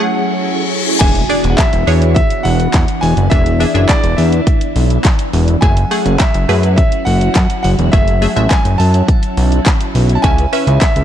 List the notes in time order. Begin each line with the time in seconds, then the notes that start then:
Already playing: F#3 A3 C#4 E4 G#4 F#5, reverse cymbal
0.00 A3 G#4 F#5
0.99 E1 E3 B3 D4 F#4 G#4 E5 G#5, kick, closed hi-hat, crash, impact
1.15 closed hi-hat
1.29 D4 G#4 D5, open hi-hat
1.44 E1, closed hi-hat
1.50 F#5
1.57 E5, kick, snare, clap, closed hi-hat
1.73 E1, closed hi-hat
1.87 E2 D4 G#4 C#5, open hi-hat
2.02 closed hi-hat
2.15 E5, kick, closed hi-hat
2.30 closed hi-hat
2.43 E1 F#5, open hi-hat
2.60 closed hi-hat
2.74 E2, kick, snare, clap, closed hi-hat
2.88 closed hi-hat
3.01 E1 G#5, open hi-hat
3.17 F#1, closed hi-hat
3.30 E1 D4 E4 G#4 E5, kick, closed hi-hat
3.46 closed hi-hat
3.60 D4 G#4 E5, open hi-hat
3.74 F#1 D4 G#4 E5, closed hi-hat
3.88 D5, kick, snare, clap, closed hi-hat
4.04 E1, closed hi-hat
4.17 E2 E5, open hi-hat
4.32 closed hi-hat
4.47 kick, closed hi-hat
4.61 closed hi-hat
4.76 B1, open hi-hat
4.90 closed hi-hat
5.05 kick, snare, clap, closed hi-hat
5.19 closed hi-hat
5.33 E1, open hi-hat
5.48 closed hi-hat
5.61 F#1 F#3 A3 C#4 F#4 G#4 E5 G#5, kick, closed hi-hat
5.77 closed hi-hat
5.91 A3 G#4 F#5, open hi-hat
6.06 F#1, closed hi-hat
6.19 E5, kick, snare, clap, closed hi-hat
6.34 F#1, closed hi-hat
6.49 F#2 A3 G#4 B4, open hi-hat
6.63 closed hi-hat
6.76 E5, kick, closed hi-hat
6.92 closed hi-hat
7.05 F#1 F#5, open hi-hat
7.21 closed hi-hat
7.35 F#2, kick, snare, clap, closed hi-hat
7.50 closed hi-hat
7.63 F#1 F#5, open hi-hat
7.79 E1, closed hi-hat
7.92 F#1 A3 G#4 E5, kick, closed hi-hat
8.08 closed hi-hat
8.22 A3 G#4 E5, open hi-hat
8.36 A1 G#3 A3 E5, closed hi-hat
8.49 G#5, kick, snare, clap, closed hi-hat
8.65 F#1, closed hi-hat
8.78 F#2 A5, open hi-hat
8.94 closed hi-hat
9.08 kick, closed hi-hat
9.23 closed hi-hat
9.37 B1, open hi-hat
9.52 closed hi-hat
9.66 kick, snare, clap, closed hi-hat
9.81 closed hi-hat
9.95 B1, open hi-hat
10.09 closed hi-hat
10.15 A5
10.22 C#2 C#3 C#4 B4 E5 G#5, kick, closed hi-hat
10.38 closed hi-hat
10.53 C#4 B4 E5, open hi-hat
10.67 C#2, closed hi-hat
10.80 E5, kick, snare, clap, closed hi-hat
10.96 C#2, closed hi-hat